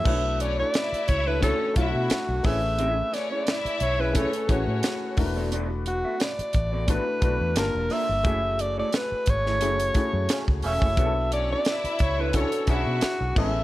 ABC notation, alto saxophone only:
X:1
M:4/4
L:1/16
Q:"Swing 16ths" 1/4=88
K:Bdor
V:1 name="Alto saxophone"
e2 d d3 c B A2 F4 e2- | e2 d d3 c B A2 F4 z2 | z2 F2 d4 B4 _B2 e2- | e2 d d B2 c6 z2 e2- |
e2 d d3 c B A2 F4 e2 |]